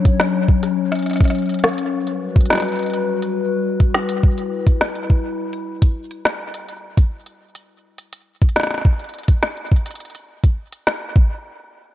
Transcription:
0.00 1.89 F#3 medium
0.00 1.90 C#4 medium
0.00 1.89 C#5 medium
0.05 kick loud
0.05 closed hi-hat medium
0.20 snare loud
0.48 kick medium
0.63 cross-stick soft
0.63 closed hi-hat medium
0.92 cross-stick medium
0.92 closed hi-hat soft
0.95 closed hi-hat soft
0.99 closed hi-hat soft
1.03 cross-stick soft
1.03 closed hi-hat soft
1.06 closed hi-hat soft
1.10 cross-stick soft
1.10 closed hi-hat soft
1.13 cross-stick soft
1.13 closed hi-hat soft
1.17 kick loud
1.17 cross-stick medium
1.17 closed hi-hat soft
1.21 closed hi-hat medium
1.24 cross-stick medium
1.24 closed hi-hat soft
1.28 cross-stick medium
1.28 closed hi-hat soft
1.31 closed hi-hat soft
1.35 closed hi-hat soft
1.39 closed hi-hat soft
1.42 closed hi-hat soft
1.46 closed hi-hat soft
1.49 closed hi-hat soft
1.54 closed hi-hat soft
1.59 closed hi-hat soft
1.64 snare loud
1.64 closed hi-hat soft
1.69 closed hi-hat soft
1.73 closed hi-hat soft
1.78 closed hi-hat medium
1.93 6.50 G3 medium
1.93 4.21 F#4 medium
1.93 6.50 B4 medium
2.07 closed hi-hat soft
2.36 kick loud
2.36 closed hi-hat soft
2.41 closed hi-hat soft
2.46 closed hi-hat soft
2.50 snare loud
2.50 closed hi-hat soft
2.53 snare medium
2.55 snare medium
2.55 closed hi-hat soft
2.58 snare medium
2.60 snare soft
2.60 closed hi-hat medium
2.62 snare soft
2.62 closed hi-hat soft
2.68 closed hi-hat soft
2.72 closed hi-hat soft
2.76 closed hi-hat soft
2.79 closed hi-hat soft
2.83 closed hi-hat soft
2.86 closed hi-hat soft
2.90 closed hi-hat soft
2.94 closed hi-hat medium
3.22 closed hi-hat soft
3.80 kick loud
3.80 closed hi-hat soft
3.94 snare loud
4.09 closed hi-hat medium
4.23 6.52 E4 medium
4.23 kick medium
4.38 closed hi-hat soft
4.67 kick loud
4.67 closed hi-hat medium
4.81 snare loud
4.95 closed hi-hat soft
5.10 kick medium
5.53 closed hi-hat soft
5.82 kick loud
5.82 closed hi-hat medium
6.11 closed hi-hat soft
6.25 snare loud
6.54 closed hi-hat medium
6.69 closed hi-hat soft
6.97 kick loud
6.97 closed hi-hat medium
7.26 closed hi-hat soft
7.55 closed hi-hat medium
7.98 closed hi-hat soft
8.13 closed hi-hat medium
8.42 kick loud
8.42 closed hi-hat soft
8.49 closed hi-hat soft
8.56 snare loud
8.56 closed hi-hat soft
8.60 snare medium
8.63 snare medium
8.63 closed hi-hat soft
8.67 snare medium
8.71 snare soft
8.74 snare soft
8.78 snare soft
8.81 kick medium
8.81 snare soft
8.99 closed hi-hat soft
9.04 closed hi-hat soft
9.09 closed hi-hat soft
9.14 closed hi-hat soft
9.19 closed hi-hat soft
9.23 closed hi-hat soft
9.28 kick loud
9.28 closed hi-hat medium
9.43 snare loud
9.57 closed hi-hat soft
9.67 closed hi-hat soft
9.72 kick medium
9.76 closed hi-hat soft
9.86 closed hi-hat medium
9.91 closed hi-hat soft
9.95 closed hi-hat soft
10.00 closed hi-hat soft
10.05 closed hi-hat soft
10.10 closed hi-hat soft
10.15 closed hi-hat medium
10.44 kick loud
10.44 closed hi-hat medium
10.73 closed hi-hat soft
10.87 snare loud
11.16 kick loud

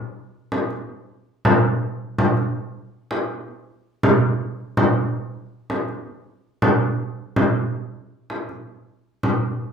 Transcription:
0.52 frame drum soft
0.70 frame drum soft
1.45 frame drum medium
2.18 frame drum medium
2.37 frame drum soft
3.11 frame drum soft
4.03 frame drum medium
4.77 frame drum medium
5.70 frame drum soft
5.89 frame drum soft
6.62 frame drum medium
7.36 frame drum medium
8.30 frame drum soft
8.49 frame drum soft
9.23 frame drum medium

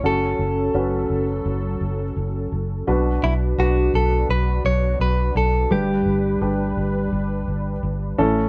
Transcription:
0.00 0.33 F#1 medium
0.00 2.83 C#4 medium
0.00 0.69 C#4 medium
0.00 0.69 F#4 medium
0.04 2.85 F#3 medium
0.04 2.85 A4 medium
0.04 0.69 A4 medium
0.04 1.43 A4 medium
0.39 0.68 F#1 medium
0.74 1.04 F#1 medium
0.74 2.04 C#4 medium
0.74 2.04 F#4 medium
0.74 2.05 B4 medium
1.10 1.39 F#1 medium
1.46 1.75 F#1 loud
1.81 2.10 F#1 medium
2.16 2.45 F#1 medium
2.52 2.81 F#1 medium
2.87 3.17 B1 medium
2.87 3.90 B2 medium
2.87 5.68 B3 medium
2.87 3.52 D4 medium
2.87 8.15 D4 medium
2.87 5.68 F#4 medium
2.87 3.52 F#4 medium
2.87 3.52 B4 medium
3.23 3.52 B1 medium
3.23 3.33 E4 medium
3.58 3.87 B1 medium
3.58 4.88 D4 medium
3.58 4.88 F#4 medium
3.58 3.92 F#4 medium
3.58 4.88 B4 medium
3.94 4.23 B1 medium
3.94 4.30 A4 medium
4.29 4.58 B1 medium
4.29 4.63 B4 medium
4.65 4.94 B1 medium
4.65 4.98 C#5 medium
5.00 5.29 B1 medium
5.00 5.37 B4 medium
5.35 5.64 B1 medium
5.35 5.73 A4 medium
5.71 6.00 G1 medium
5.71 6.73 G2 medium
5.71 8.16 G3 medium
5.71 6.35 D4 medium
5.71 6.36 G4 medium
5.71 7.09 G4 medium
5.71 6.36 B4 medium
5.71 8.16 B4 medium
6.06 6.35 G1 medium
6.41 6.70 G1 medium
6.41 7.71 D4 medium
6.41 7.71 G4 medium
6.41 7.71 B4 medium
6.77 7.06 G1 medium
7.12 7.41 G1 medium
7.48 7.77 G1 medium
7.83 8.12 G1 medium
8.18 8.49 A1 medium
8.18 8.49 A2 medium
8.18 8.49 A3 medium
8.18 8.49 C#4 medium
8.18 8.49 E4 medium
8.18 8.49 A4 medium

